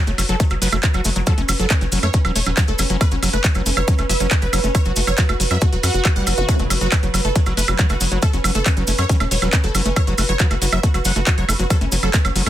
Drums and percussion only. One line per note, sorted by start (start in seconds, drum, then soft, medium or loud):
0.07 closed hi-hat soft
0.07 cabasa soft
0.18 open hi-hat medium
0.18 cabasa medium
0.18 high woodblock soft
0.29 closed hi-hat soft
0.29 cabasa soft
0.40 kick loud
0.40 closed hi-hat loud
0.40 cabasa medium
0.50 closed hi-hat soft
0.50 cabasa soft
0.50 high woodblock soft
0.62 open hi-hat loud
0.62 cabasa loud
0.72 closed hi-hat soft
0.72 cabasa soft
0.72 high woodblock medium
0.83 kick loud
0.83 clap loud
0.83 closed hi-hat loud
0.83 cabasa medium
0.94 closed hi-hat soft
0.94 cabasa soft
0.94 high woodblock soft
1.04 open hi-hat medium
1.04 cabasa medium
1.16 closed hi-hat soft
1.16 cabasa soft
1.26 kick loud
1.26 closed hi-hat medium
1.26 cabasa medium
1.26 high woodblock soft
1.38 closed hi-hat soft
1.38 cabasa soft
1.49 open hi-hat loud
1.49 cabasa loud
1.49 high woodblock medium
1.59 closed hi-hat soft
1.59 cabasa soft
1.70 kick loud
1.70 clap loud
1.70 closed hi-hat medium
1.70 cabasa medium
1.70 high woodblock soft
1.81 closed hi-hat soft
1.81 cabasa soft
1.92 open hi-hat medium
1.92 cabasa medium
2.03 closed hi-hat soft
2.03 cabasa soft
2.03 high woodblock soft
2.13 kick loud
2.13 closed hi-hat loud
2.13 cabasa medium
2.25 closed hi-hat soft
2.25 cabasa soft
2.25 high woodblock medium
2.36 open hi-hat loud
2.36 cabasa loud
2.46 closed hi-hat soft
2.46 cabasa soft
2.46 high woodblock soft
2.57 kick loud
2.57 clap loud
2.57 closed hi-hat medium
2.57 cabasa medium
2.68 closed hi-hat soft
2.68 cabasa soft
2.79 open hi-hat loud
2.79 cabasa loud
2.79 high woodblock soft
2.90 closed hi-hat soft
2.90 cabasa soft
3.01 kick loud
3.01 closed hi-hat medium
3.01 cabasa medium
3.01 high woodblock medium
3.11 closed hi-hat soft
3.11 cabasa soft
3.23 open hi-hat loud
3.23 cabasa medium
3.23 high woodblock soft
3.33 closed hi-hat soft
3.33 cabasa soft
3.44 kick loud
3.44 clap loud
3.44 closed hi-hat medium
3.44 cabasa medium
3.55 closed hi-hat soft
3.55 cabasa soft
3.55 high woodblock soft
3.66 open hi-hat loud
3.66 cabasa medium
3.77 closed hi-hat soft
3.77 cabasa soft
3.77 high woodblock medium
3.88 kick loud
3.88 closed hi-hat medium
3.88 cabasa medium
3.98 closed hi-hat soft
3.98 cabasa soft
3.98 high woodblock soft
4.09 open hi-hat loud
4.09 cabasa loud
4.20 closed hi-hat soft
4.20 cabasa soft
4.31 kick loud
4.31 clap loud
4.31 closed hi-hat medium
4.31 cabasa medium
4.31 high woodblock soft
4.42 closed hi-hat soft
4.42 cabasa soft
4.53 open hi-hat loud
4.53 cabasa loud
4.53 high woodblock medium
4.64 closed hi-hat soft
4.64 cabasa soft
4.75 kick loud
4.75 closed hi-hat medium
4.75 cabasa medium
4.75 high woodblock soft
4.85 closed hi-hat soft
4.85 cabasa soft
4.96 open hi-hat loud
4.96 cabasa loud
5.07 closed hi-hat soft
5.07 cabasa soft
5.07 high woodblock soft
5.17 kick loud
5.17 clap loud
5.17 closed hi-hat medium
5.17 cabasa medium
5.29 closed hi-hat soft
5.29 cabasa soft
5.29 high woodblock medium
5.40 open hi-hat loud
5.40 cabasa loud
5.51 closed hi-hat soft
5.51 cabasa soft
5.51 high woodblock soft
5.61 kick loud
5.61 closed hi-hat medium
5.61 cabasa medium
5.73 closed hi-hat soft
5.73 cabasa soft
5.83 open hi-hat loud
5.83 cabasa loud
5.83 high woodblock soft
5.94 closed hi-hat soft
5.94 cabasa soft
6.05 kick loud
6.05 clap loud
6.05 closed hi-hat medium
6.05 cabasa soft
6.05 high woodblock medium
6.16 closed hi-hat soft
6.16 cabasa soft
6.27 open hi-hat loud
6.27 cabasa loud
6.27 high woodblock soft
6.38 closed hi-hat soft
6.38 cabasa soft
6.49 kick loud
6.49 closed hi-hat medium
6.49 cabasa soft
6.59 closed hi-hat soft
6.59 cabasa soft
6.70 open hi-hat loud
6.70 cabasa loud
6.70 high woodblock soft
6.81 closed hi-hat soft
6.81 cabasa soft
6.92 kick loud
6.92 clap loud
6.92 closed hi-hat medium
6.92 cabasa medium
6.92 high woodblock medium
7.03 closed hi-hat soft
7.03 cabasa soft
7.14 open hi-hat medium
7.14 cabasa medium
7.14 high woodblock soft
7.25 closed hi-hat soft
7.25 cabasa soft
7.36 kick loud
7.36 closed hi-hat medium
7.36 cabasa medium
7.46 closed hi-hat soft
7.46 cabasa soft
7.46 high woodblock soft
7.57 open hi-hat loud
7.57 cabasa loud
7.68 closed hi-hat soft
7.68 cabasa soft
7.68 high woodblock medium
7.79 kick loud
7.79 clap loud
7.79 closed hi-hat medium
7.79 cabasa soft
7.89 closed hi-hat soft
7.89 cabasa soft
7.89 high woodblock soft
8.01 open hi-hat medium
8.01 cabasa loud
8.12 closed hi-hat soft
8.12 cabasa soft
8.22 kick loud
8.22 closed hi-hat medium
8.22 cabasa soft
8.22 high woodblock soft
8.33 closed hi-hat soft
8.33 cabasa soft
8.44 open hi-hat loud
8.44 cabasa medium
8.44 high woodblock medium
8.55 closed hi-hat soft
8.55 cabasa soft
8.66 kick loud
8.66 clap loud
8.66 closed hi-hat medium
8.66 cabasa medium
8.66 high woodblock soft
8.77 closed hi-hat soft
8.77 cabasa soft
8.87 open hi-hat medium
8.87 cabasa loud
8.98 closed hi-hat soft
8.98 cabasa soft
8.98 high woodblock soft
9.09 kick loud
9.09 closed hi-hat loud
9.09 cabasa medium
9.20 closed hi-hat soft
9.20 cabasa soft
9.20 high woodblock medium
9.31 open hi-hat loud
9.31 cabasa medium
9.42 closed hi-hat soft
9.42 cabasa soft
9.42 high woodblock soft
9.53 kick loud
9.53 clap loud
9.53 closed hi-hat medium
9.53 cabasa medium
9.64 closed hi-hat soft
9.64 cabasa soft
9.75 open hi-hat medium
9.75 cabasa medium
9.75 high woodblock soft
9.85 closed hi-hat soft
9.85 cabasa soft
9.96 kick loud
9.96 closed hi-hat loud
9.96 cabasa medium
9.96 high woodblock medium
10.07 closed hi-hat soft
10.07 cabasa soft
10.18 open hi-hat loud
10.18 cabasa medium
10.18 high woodblock soft
10.29 closed hi-hat soft
10.29 cabasa soft
10.39 kick loud
10.39 clap loud
10.39 closed hi-hat medium
10.39 cabasa medium
10.51 closed hi-hat soft
10.51 cabasa soft
10.51 high woodblock soft
10.62 open hi-hat medium
10.62 cabasa medium
10.72 closed hi-hat soft
10.72 cabasa soft
10.72 high woodblock medium
10.83 kick loud
10.83 closed hi-hat loud
10.83 cabasa medium
10.94 closed hi-hat soft
10.94 cabasa soft
10.94 high woodblock soft
11.05 open hi-hat loud
11.05 cabasa medium
11.16 closed hi-hat soft
11.16 cabasa soft
11.27 kick loud
11.27 clap loud
11.27 closed hi-hat medium
11.27 cabasa soft
11.27 high woodblock soft
11.38 closed hi-hat soft
11.38 cabasa soft
11.49 open hi-hat medium
11.49 cabasa medium
11.49 high woodblock medium
11.59 closed hi-hat soft
11.59 cabasa soft
11.70 kick loud
11.70 closed hi-hat loud
11.70 cabasa medium
11.70 high woodblock soft
11.81 closed hi-hat soft
11.81 cabasa soft
11.92 open hi-hat loud
11.92 cabasa medium
12.03 closed hi-hat soft
12.03 cabasa soft
12.03 high woodblock soft
12.13 kick loud
12.13 clap loud
12.13 closed hi-hat loud
12.13 cabasa medium
12.25 closed hi-hat soft
12.25 cabasa soft
12.25 high woodblock medium
12.36 open hi-hat medium
12.36 cabasa medium
12.46 closed hi-hat soft
12.46 high woodblock soft